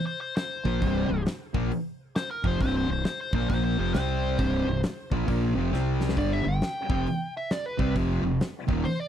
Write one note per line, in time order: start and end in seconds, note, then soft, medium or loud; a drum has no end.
0.06 0.20 C5 medium
0.21 0.35 C5 medium
0.36 1.23 C5 medium
0.36 snare loud
0.36 open hi-hat medium
0.65 0.81 A#1 medium
0.65 0.81 A#2 medium
0.65 0.81 F3 medium
0.65 0.81 A#3 loud
0.65 kick medium
0.81 1.08 C1 loud
0.81 1.09 C2 medium
0.81 1.09 G2 medium
0.81 1.09 C3 medium
0.81 kick medium
0.81 open hi-hat medium
1.09 1.25 C1 medium
1.09 1.23 C2 medium
1.09 1.23 G2 medium
1.26 snare medium
1.26 open hi-hat medium
1.54 1.70 A#1 medium
1.54 1.70 A#2 medium
1.54 1.71 F3 medium
1.54 1.71 A#3 loud
1.54 kick loud
1.72 open hi-hat medium
2.16 2.30 C5 loud
2.16 snare loud
2.16 open hi-hat medium
2.31 2.47 A#4 medium
2.44 2.59 F1 loud
2.44 2.60 F2 medium
2.44 2.60 C3 medium
2.44 2.60 F3 medium
2.44 2.61 C5 medium
2.44 kick medium
2.61 2.87 C1 medium
2.61 2.88 C2 medium
2.61 2.88 G2 medium
2.61 2.88 C3 medium
2.61 2.75 C5 loud
2.61 kick medium
2.61 open hi-hat soft
2.77 2.90 C5 medium
2.88 3.04 C1 medium
2.88 3.02 C2 medium
2.88 3.02 G2 medium
2.88 3.04 C5 medium
3.05 3.19 C5 medium
3.05 snare loud
3.05 open hi-hat soft
3.21 3.34 C5 medium
3.33 3.49 A#1 medium
3.33 3.50 A#2 medium
3.33 3.50 F3 medium
3.33 3.50 A#3 loud
3.33 3.49 C5 medium
3.33 kick loud
3.49 3.76 A#1 medium
3.49 3.77 A#2 medium
3.49 3.77 F3 medium
3.49 3.78 A#3 loud
3.49 3.63 C5 medium
3.49 kick loud
3.49 open hi-hat soft
3.64 3.79 C5 medium
3.78 3.94 F1 medium
3.78 3.94 F2 medium
3.78 3.93 C3 medium
3.78 3.94 F3 medium
3.78 3.93 C5 medium
3.94 4.36 C2 medium
3.94 4.39 C3 medium
3.94 4.39 G3 loud
3.94 4.39 C4 loud
3.94 4.81 C5 loud
3.94 snare loud
3.94 open hi-hat soft
4.39 4.65 C1 medium
4.39 4.66 C2 medium
4.39 4.66 G2 medium
4.39 4.66 C3 loud
4.39 kick loud
4.39 open hi-hat soft
4.67 4.82 C1 medium
4.67 4.80 C2 medium
4.67 4.81 G2 medium
4.83 snare loud
4.83 open hi-hat medium
5.11 5.27 A#1 medium
5.11 5.26 A#2 medium
5.11 5.27 F3 loud
5.11 5.27 A#3 loud
5.11 kick loud
5.28 5.54 A#1 loud
5.28 5.55 A#2 medium
5.28 5.54 F3 medium
5.28 5.55 A#3 medium
5.28 kick loud
5.28 open hi-hat medium
5.55 5.72 F1 medium
5.55 5.72 F2 medium
5.55 5.71 C3 medium
5.55 5.72 F3 medium
5.72 6.14 C2 medium
5.72 6.17 C3 loud
5.72 6.17 G3 loud
5.72 6.17 C4 loud
5.72 snare medium
6.01 snare medium
6.09 snare medium
6.17 6.43 G1 loud
6.17 6.43 G2 medium
6.17 6.44 D3 loud
6.17 6.45 G3 medium
6.17 6.33 D5 medium
6.17 kick loud
6.17 open hi-hat soft
6.33 6.47 E5 medium
6.45 6.61 G1 medium
6.45 6.58 G2 medium
6.45 6.58 D3 medium
6.45 7.34 G5 medium
6.62 snare loud
6.62 open hi-hat soft
6.89 7.05 F1 medium
6.89 7.06 F2 medium
6.89 7.06 C3 medium
6.89 7.06 F3 medium
6.89 kick loud
7.07 open hi-hat soft
7.37 7.51 E5 medium
7.51 7.66 D5 medium
7.51 snare loud
7.51 open hi-hat soft
7.66 7.95 B4 medium
7.78 7.95 C2 medium
7.78 7.94 C3 medium
7.78 7.95 G3 medium
7.78 7.95 C4 loud
7.78 kick loud
7.95 8.22 F1 medium
7.95 8.22 F2 medium
7.95 8.22 C3 medium
7.95 8.23 F3 medium
7.95 kick medium
7.95 open hi-hat soft
8.23 8.39 F1 medium
8.23 8.37 F2 medium
8.23 8.37 C3 medium
8.41 snare loud
8.41 open hi-hat medium
8.68 8.84 D#1 medium
8.68 8.84 D#2 medium
8.68 8.85 A#2 medium
8.68 8.85 D#3 medium
8.68 kick loud
8.85 9.00 C5 loud
8.85 open hi-hat medium
9.00 9.08 D5 medium